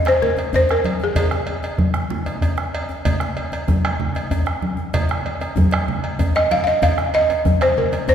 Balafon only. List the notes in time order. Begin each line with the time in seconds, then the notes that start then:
0.08 C5
0.22 A#4
0.56 C5
0.71 A#4
1.04 G#4
1.19 G#4
6.36 D#5
6.52 F5
6.64 D#5 F5
6.83 F5
7.15 D#5
7.62 C5
7.78 A#4
8.09 C5